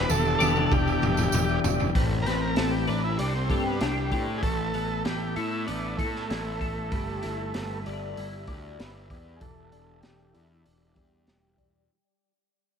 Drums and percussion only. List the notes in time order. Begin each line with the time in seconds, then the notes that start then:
0.10 high tom, tambourine
0.25 tambourine
0.40 high tom, tambourine
0.56 mid tom, tambourine
0.71 kick, mid tom, tambourine
0.88 tambourine
1.02 mid tom, tambourine
1.17 mid tom, tambourine
1.32 mid tom, tambourine
1.49 tambourine
1.64 floor tom, tambourine
1.80 floor tom, tambourine
1.95 kick, open hi-hat
2.26 snare, open hi-hat
2.56 snare, open hi-hat
2.87 open hi-hat
3.19 open hi-hat
3.50 kick, open hi-hat
3.81 snare, open hi-hat
4.12 kick, open hi-hat
4.43 kick, open hi-hat
4.74 open hi-hat
5.05 snare, open hi-hat
5.36 open hi-hat
5.68 open hi-hat
5.99 kick, open hi-hat
6.16 snare
6.30 snare, open hi-hat
6.61 kick, open hi-hat
6.92 kick, open hi-hat
7.23 snare, open hi-hat
7.54 snare, open hi-hat
7.86 open hi-hat
8.17 open hi-hat
8.47 kick, open hi-hat
8.80 snare, open hi-hat
9.10 kick, open hi-hat
9.41 kick, open hi-hat
9.72 open hi-hat
10.03 snare, open hi-hat
10.35 open hi-hat
10.66 open hi-hat
10.96 kick, open hi-hat
11.27 snare, open hi-hat
11.58 kick, open hi-hat